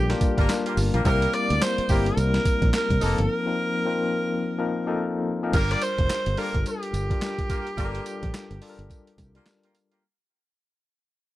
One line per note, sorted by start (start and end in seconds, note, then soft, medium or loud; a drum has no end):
0.00 0.13 A#1 loud
0.00 0.09 G3 medium
0.00 0.10 A#3 medium
0.00 0.10 D4 medium
0.00 0.10 F4 medium
0.00 0.77 G4 loud
0.00 1.06 A4 medium
0.00 0.11 A#4 medium
0.09 0.34 G3 loud
0.09 0.35 A#3 medium
0.09 0.35 D4 loud
0.09 0.35 F4 loud
0.09 0.35 A#4 loud
0.09 snare medium
0.09 closed hi-hat medium
0.21 kick loud
0.21 closed hi-hat loud
0.21 tambourine medium
0.37 0.46 G1 medium
0.37 0.87 G3 loud
0.37 0.87 A#3 medium
0.37 0.51 A#3 loud
0.37 0.87 D4 loud
0.37 0.50 F4 medium
0.37 0.87 F4 medium
0.37 0.50 G4 medium
0.37 0.51 A#4 loud
0.37 0.88 A#4 loud
0.37 kick loud
0.37 closed hi-hat medium
0.49 snare loud
0.49 clap medium
0.49 closed hi-hat medium
0.49 tambourine medium
0.65 0.78 A#3 medium
0.65 0.78 F4 medium
0.65 0.78 G4 medium
0.65 0.78 A#4 medium
0.65 closed hi-hat medium
0.77 0.89 G1 medium
0.77 open hi-hat medium
0.77 tambourine medium
0.93 1.02 A#1 medium
0.93 1.04 G3 medium
0.93 1.04 A#3 medium
0.93 1.04 D4 medium
0.93 1.06 F4 medium
0.93 1.04 F4 medium
0.93 1.06 G4 medium
0.93 1.04 A#4 medium
0.93 1.04 A#4 loud
0.93 closed hi-hat medium
1.04 1.25 C2 loud
1.04 1.82 G3 loud
1.04 1.83 A#3 medium
1.04 1.31 A#3 loud
1.04 1.31 C4 loud
1.04 1.83 C4 medium
1.04 1.31 E4 medium
1.04 1.83 E4 medium
1.04 1.31 A#4 loud
1.04 1.35 A#4 loud
1.04 1.83 A#4 loud
1.04 kick loud
1.04 closed hi-hat medium
1.04 tambourine medium
1.22 closed hi-hat medium
1.33 1.63 D5 loud
1.33 closed hi-hat medium
1.50 1.58 D2 medium
1.50 closed hi-hat medium
1.62 1.91 C5 loud
1.62 snare loud
1.62 clap loud
1.62 closed hi-hat medium
1.62 tambourine loud
1.78 muted fingered electric bass stroke medium
1.78 closed hi-hat medium
1.89 2.10 G1 medium
1.89 2.93 G3 medium
1.89 2.93 A#3 medium
1.89 2.07 A#3 medium
1.89 2.07 C4 medium
1.89 2.93 C4 medium
1.89 2.07 E4 medium
1.89 2.93 E4 medium
1.89 2.19 G4 loud
1.89 2.07 A#4 medium
1.89 2.93 A#4 medium
1.89 kick loud
1.89 open hi-hat medium
1.89 tambourine medium
2.06 closed hi-hat medium
2.17 2.37 C2 loud
2.17 2.74 A#4 loud
2.17 closed hi-hat medium
2.17 tambourine medium
2.34 snare medium
2.34 closed hi-hat medium
2.45 kick loud
2.45 closed hi-hat medium
2.45 tambourine medium
2.62 2.70 A#1 loud
2.62 kick loud
2.62 closed hi-hat medium
2.73 3.04 A#4 loud
2.73 snare loud
2.73 clap loud
2.73 closed hi-hat medium
2.73 tambourine medium
2.90 2.98 C2 loud
2.90 kick medium
2.90 closed hi-hat medium
3.01 3.14 F1 loud
3.01 3.41 F3 medium
3.01 3.41 A#3 medium
3.01 3.19 A#3 medium
3.01 3.41 C4 medium
3.01 3.19 D#4 medium
3.01 3.41 D#4 medium
3.01 3.19 F4 medium
3.01 3.21 A4 medium
3.01 3.19 A#4 loud
3.01 3.42 A#4 medium
3.01 open hi-hat medium
3.01 tambourine medium
3.18 3.26 G1 medium
3.18 4.98 A#4 loud
3.18 closed hi-hat medium
3.46 3.82 F3 medium
3.46 3.82 A#3 medium
3.46 3.82 C4 medium
3.46 3.83 D#4 medium
3.46 3.83 A#4 medium
3.85 4.50 F3 medium
3.85 4.50 A#3 medium
3.85 4.50 C4 medium
3.85 4.51 D#4 medium
3.85 4.51 A#4 loud
4.58 4.83 F3 loud
4.58 4.83 A#3 medium
4.58 4.84 C4 medium
4.58 4.84 D#4 medium
4.58 4.84 A#4 loud
4.87 5.36 F3 loud
4.87 5.36 A#3 loud
4.87 5.36 C4 medium
4.87 5.36 D#4 loud
4.87 5.37 A4 loud
5.43 5.53 F3 loud
5.43 5.53 A#3 loud
5.43 5.53 C4 loud
5.43 5.53 D#4 medium
5.43 5.53 A#4 loud
5.53 5.74 G1 loud
5.53 6.31 G3 medium
5.53 5.80 A#3 loud
5.53 6.31 D4 medium
5.53 5.80 F4 loud
5.53 6.32 F4 medium
5.53 5.80 G4 medium
5.53 5.80 A#4 loud
5.53 5.73 A#4 loud
5.53 6.32 A#4 loud
5.53 kick loud
5.53 closed hi-hat medium
5.53 crash loud
5.53 tambourine medium
5.71 5.84 D5 loud
5.71 closed hi-hat medium
5.81 6.40 C5 loud
5.81 closed hi-hat medium
5.81 tambourine medium
5.98 6.07 F1 medium
5.98 kick loud
5.98 closed hi-hat medium
6.10 snare loud
6.10 clap loud
6.10 closed hi-hat medium
6.10 tambourine loud
6.26 6.35 G1 medium
6.26 closed hi-hat soft
6.37 7.02 G3 medium
6.37 6.55 A#3 medium
6.37 7.02 D4 medium
6.37 6.55 F4 medium
6.37 7.03 F4 medium
6.37 6.55 G4 medium
6.37 6.46 A4 medium
6.37 6.55 A#4 medium
6.37 6.68 A#4 loud
6.37 open hi-hat medium
6.45 7.06 A#4 medium
6.55 6.63 G1 medium
6.55 kick loud
6.55 closed hi-hat medium
6.66 9.46 G4 loud
6.66 closed hi-hat medium
6.66 tambourine medium
6.83 closed hi-hat medium
6.93 7.14 G1 medium
6.93 closed hi-hat medium
6.93 tambourine medium
7.10 7.72 G3 medium
7.10 7.72 D4 medium
7.10 7.73 F4 medium
7.10 7.73 A#4 medium
7.10 kick loud
7.10 closed hi-hat medium
7.22 snare loud
7.22 clap loud
7.22 closed hi-hat medium
7.22 tambourine medium
7.38 kick medium
7.38 closed hi-hat medium
7.49 7.68 A#3 medium
7.49 7.67 F4 medium
7.49 7.67 G4 medium
7.49 7.68 A#4 medium
7.49 kick loud
7.49 closed hi-hat loud
7.49 tambourine medium
7.67 closed hi-hat soft
7.77 7.98 G1 loud
7.77 8.55 G3 loud
7.77 8.04 A#3 loud
7.77 8.56 D4 loud
7.77 8.04 F4 loud
7.77 8.56 F4 loud
7.77 8.04 G4 medium
7.77 7.86 A4 medium
7.77 8.04 A#4 loud
7.77 kick loud
7.77 closed hi-hat medium
7.77 tambourine medium
7.85 8.59 A#4 loud
7.95 closed hi-hat medium
8.06 closed hi-hat medium
8.06 tambourine medium
8.23 8.31 A#1 medium
8.23 kick medium
8.23 closed hi-hat medium
8.34 snare loud
8.34 clap medium
8.34 closed hi-hat medium
8.34 tambourine loud
8.51 8.59 G1 loud
8.51 closed hi-hat soft
8.62 9.27 G3 loud
8.62 9.27 D4 medium
8.62 9.27 F4 medium
8.62 8.70 A4 medium
8.62 open hi-hat loud
8.69 9.30 A#4 loud
8.78 8.87 G1 medium
8.78 closed hi-hat soft
8.90 kick medium
8.90 closed hi-hat medium
8.90 tambourine medium
9.07 closed hi-hat medium
9.18 9.38 C2 loud
9.18 kick loud
9.18 closed hi-hat medium
9.18 tambourine medium
9.35 9.97 G3 medium
9.35 9.48 A#3 medium
9.35 9.97 D4 medium
9.35 9.47 F4 medium
9.35 9.97 F4 medium
9.35 9.48 G4 medium
9.35 9.48 A#4 medium
9.35 9.97 A#4 loud
9.35 closed hi-hat medium
9.46 snare loud
9.46 clap loud
9.46 closed hi-hat medium
9.46 tambourine medium
9.63 9.76 A#3 medium
9.63 9.75 F4 medium
9.63 9.76 G4 medium
9.63 9.76 A#4 medium
9.63 closed hi-hat medium
9.75 closed hi-hat medium
9.75 tambourine medium
9.91 10.04 A#3 medium
9.91 10.03 F4 medium
9.91 10.04 G4 medium
9.91 10.04 A#4 medium
9.91 closed hi-hat soft